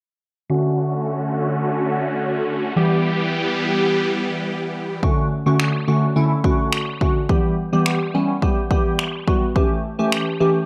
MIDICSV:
0, 0, Header, 1, 4, 480
1, 0, Start_track
1, 0, Key_signature, 2, "major"
1, 0, Tempo, 566038
1, 425, Time_signature, 4, 2, 24, 8
1, 9037, End_track
2, 0, Start_track
2, 0, Title_t, "Supersaw synth"
2, 0, Program_c, 0, 81
2, 424, Note_on_c, 0, 50, 75
2, 425, Note_on_c, 0, 57, 73
2, 425, Note_on_c, 0, 61, 70
2, 425, Note_on_c, 0, 66, 88
2, 2325, Note_off_c, 0, 50, 0
2, 2325, Note_off_c, 0, 57, 0
2, 2325, Note_off_c, 0, 61, 0
2, 2326, Note_off_c, 0, 66, 0
2, 2345, Note_on_c, 0, 52, 78
2, 2345, Note_on_c, 0, 55, 73
2, 2345, Note_on_c, 0, 59, 71
2, 2345, Note_on_c, 0, 67, 85
2, 4246, Note_off_c, 0, 52, 0
2, 4246, Note_off_c, 0, 55, 0
2, 4246, Note_off_c, 0, 59, 0
2, 4246, Note_off_c, 0, 67, 0
2, 9037, End_track
3, 0, Start_track
3, 0, Title_t, "Synth keys"
3, 0, Program_c, 1, 88
3, 420, Note_on_c, 1, 50, 69
3, 423, Note_on_c, 1, 57, 62
3, 426, Note_on_c, 1, 61, 60
3, 428, Note_on_c, 1, 66, 73
3, 2309, Note_off_c, 1, 50, 0
3, 2310, Note_off_c, 1, 57, 0
3, 2311, Note_off_c, 1, 61, 0
3, 2312, Note_off_c, 1, 66, 0
3, 2341, Note_on_c, 1, 52, 69
3, 2344, Note_on_c, 1, 55, 65
3, 2347, Note_on_c, 1, 59, 63
3, 2350, Note_on_c, 1, 67, 77
3, 4229, Note_off_c, 1, 52, 0
3, 4230, Note_off_c, 1, 55, 0
3, 4232, Note_off_c, 1, 59, 0
3, 4233, Note_off_c, 1, 67, 0
3, 4263, Note_on_c, 1, 50, 79
3, 4264, Note_on_c, 1, 57, 70
3, 4265, Note_on_c, 1, 61, 75
3, 4267, Note_on_c, 1, 66, 88
3, 4480, Note_off_c, 1, 50, 0
3, 4480, Note_off_c, 1, 57, 0
3, 4481, Note_off_c, 1, 61, 0
3, 4482, Note_off_c, 1, 66, 0
3, 4630, Note_on_c, 1, 50, 79
3, 4632, Note_on_c, 1, 57, 75
3, 4633, Note_on_c, 1, 61, 71
3, 4634, Note_on_c, 1, 66, 86
3, 4844, Note_off_c, 1, 50, 0
3, 4845, Note_off_c, 1, 57, 0
3, 4846, Note_off_c, 1, 61, 0
3, 4846, Note_off_c, 1, 66, 0
3, 4982, Note_on_c, 1, 50, 79
3, 4984, Note_on_c, 1, 57, 75
3, 4985, Note_on_c, 1, 61, 77
3, 4987, Note_on_c, 1, 66, 88
3, 5132, Note_off_c, 1, 50, 0
3, 5133, Note_off_c, 1, 57, 0
3, 5134, Note_off_c, 1, 61, 0
3, 5135, Note_off_c, 1, 66, 0
3, 5222, Note_on_c, 1, 50, 84
3, 5223, Note_on_c, 1, 57, 75
3, 5225, Note_on_c, 1, 61, 74
3, 5227, Note_on_c, 1, 64, 92
3, 5372, Note_off_c, 1, 50, 0
3, 5373, Note_off_c, 1, 57, 0
3, 5373, Note_off_c, 1, 61, 0
3, 5374, Note_off_c, 1, 64, 0
3, 5463, Note_on_c, 1, 50, 78
3, 5464, Note_on_c, 1, 57, 74
3, 5466, Note_on_c, 1, 61, 76
3, 5468, Note_on_c, 1, 66, 93
3, 5753, Note_off_c, 1, 50, 0
3, 5753, Note_off_c, 1, 57, 0
3, 5754, Note_off_c, 1, 61, 0
3, 5755, Note_off_c, 1, 66, 0
3, 5942, Note_on_c, 1, 50, 78
3, 5944, Note_on_c, 1, 57, 69
3, 5946, Note_on_c, 1, 61, 73
3, 5947, Note_on_c, 1, 66, 87
3, 6092, Note_off_c, 1, 50, 0
3, 6093, Note_off_c, 1, 57, 0
3, 6094, Note_off_c, 1, 61, 0
3, 6095, Note_off_c, 1, 66, 0
3, 6183, Note_on_c, 1, 52, 79
3, 6185, Note_on_c, 1, 55, 70
3, 6186, Note_on_c, 1, 59, 69
3, 6188, Note_on_c, 1, 67, 87
3, 6400, Note_off_c, 1, 52, 0
3, 6401, Note_off_c, 1, 55, 0
3, 6402, Note_off_c, 1, 59, 0
3, 6402, Note_off_c, 1, 67, 0
3, 6551, Note_on_c, 1, 52, 80
3, 6553, Note_on_c, 1, 55, 73
3, 6554, Note_on_c, 1, 59, 73
3, 6555, Note_on_c, 1, 67, 90
3, 6764, Note_off_c, 1, 52, 0
3, 6765, Note_off_c, 1, 55, 0
3, 6766, Note_off_c, 1, 59, 0
3, 6767, Note_off_c, 1, 67, 0
3, 6904, Note_on_c, 1, 52, 80
3, 6906, Note_on_c, 1, 55, 75
3, 6907, Note_on_c, 1, 59, 76
3, 6908, Note_on_c, 1, 61, 89
3, 7053, Note_off_c, 1, 52, 0
3, 7054, Note_off_c, 1, 55, 0
3, 7055, Note_off_c, 1, 59, 0
3, 7055, Note_off_c, 1, 61, 0
3, 7144, Note_on_c, 1, 52, 86
3, 7144, Note_on_c, 1, 55, 77
3, 7146, Note_on_c, 1, 59, 79
3, 7148, Note_on_c, 1, 67, 91
3, 7293, Note_off_c, 1, 52, 0
3, 7293, Note_off_c, 1, 55, 0
3, 7294, Note_off_c, 1, 59, 0
3, 7295, Note_off_c, 1, 67, 0
3, 7383, Note_on_c, 1, 52, 82
3, 7384, Note_on_c, 1, 55, 76
3, 7386, Note_on_c, 1, 59, 78
3, 7387, Note_on_c, 1, 67, 94
3, 7673, Note_off_c, 1, 52, 0
3, 7673, Note_off_c, 1, 55, 0
3, 7674, Note_off_c, 1, 59, 0
3, 7675, Note_off_c, 1, 67, 0
3, 7863, Note_on_c, 1, 52, 79
3, 7864, Note_on_c, 1, 55, 75
3, 7865, Note_on_c, 1, 59, 71
3, 7867, Note_on_c, 1, 66, 89
3, 8013, Note_off_c, 1, 52, 0
3, 8013, Note_off_c, 1, 55, 0
3, 8014, Note_off_c, 1, 59, 0
3, 8015, Note_off_c, 1, 66, 0
3, 8103, Note_on_c, 1, 52, 82
3, 8104, Note_on_c, 1, 57, 73
3, 8106, Note_on_c, 1, 61, 73
3, 8106, Note_on_c, 1, 67, 88
3, 8320, Note_off_c, 1, 52, 0
3, 8320, Note_off_c, 1, 57, 0
3, 8321, Note_off_c, 1, 61, 0
3, 8322, Note_off_c, 1, 67, 0
3, 8469, Note_on_c, 1, 52, 83
3, 8470, Note_on_c, 1, 57, 76
3, 8472, Note_on_c, 1, 61, 74
3, 8473, Note_on_c, 1, 67, 88
3, 8683, Note_off_c, 1, 52, 0
3, 8684, Note_off_c, 1, 57, 0
3, 8685, Note_off_c, 1, 61, 0
3, 8685, Note_off_c, 1, 67, 0
3, 8821, Note_on_c, 1, 52, 85
3, 8822, Note_on_c, 1, 57, 76
3, 8824, Note_on_c, 1, 61, 77
3, 8825, Note_on_c, 1, 67, 91
3, 8972, Note_off_c, 1, 52, 0
3, 8972, Note_off_c, 1, 57, 0
3, 8973, Note_off_c, 1, 61, 0
3, 8974, Note_off_c, 1, 67, 0
3, 9037, End_track
4, 0, Start_track
4, 0, Title_t, "Drums"
4, 4265, Note_on_c, 9, 36, 107
4, 4350, Note_off_c, 9, 36, 0
4, 4745, Note_on_c, 9, 26, 108
4, 4830, Note_off_c, 9, 26, 0
4, 5463, Note_on_c, 9, 36, 89
4, 5548, Note_off_c, 9, 36, 0
4, 5703, Note_on_c, 9, 26, 106
4, 5788, Note_off_c, 9, 26, 0
4, 5946, Note_on_c, 9, 36, 89
4, 6031, Note_off_c, 9, 36, 0
4, 6185, Note_on_c, 9, 36, 106
4, 6270, Note_off_c, 9, 36, 0
4, 6665, Note_on_c, 9, 26, 106
4, 6749, Note_off_c, 9, 26, 0
4, 7143, Note_on_c, 9, 36, 91
4, 7228, Note_off_c, 9, 36, 0
4, 7383, Note_on_c, 9, 36, 90
4, 7468, Note_off_c, 9, 36, 0
4, 7623, Note_on_c, 9, 26, 107
4, 7708, Note_off_c, 9, 26, 0
4, 7866, Note_on_c, 9, 36, 89
4, 7950, Note_off_c, 9, 36, 0
4, 8105, Note_on_c, 9, 36, 104
4, 8189, Note_off_c, 9, 36, 0
4, 8585, Note_on_c, 9, 26, 109
4, 8669, Note_off_c, 9, 26, 0
4, 9037, End_track
0, 0, End_of_file